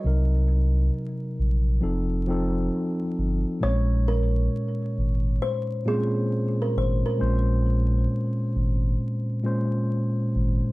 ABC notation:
X:1
M:4/4
L:1/16
Q:"Swing 16ths" 1/4=67
K:Bbm
V:1 name="Kalimba"
e8- e3 z4 z | d2 B6 c2 A3 B c B- | B12- B2 z2 |]
V:2 name="Tine electric piano"
[C,G,EB]6 z2 [F,CE=A]2 [F,CEA]4 z2 | [B,,A,CDd]6 z4 [B,,A,CDc]4 z2 | [B,,A,Dc]6 z4 [B,,A,Dc]4 z2 |]
V:3 name="Sub bass" clef=bass
C,,4 z2 B,,,2 F,,,4 z2 =G,,, z | B,,,4 z2 A,,,2 z6 A,,, z | B,,,4 z2 A,,,2 z6 A,,, z |]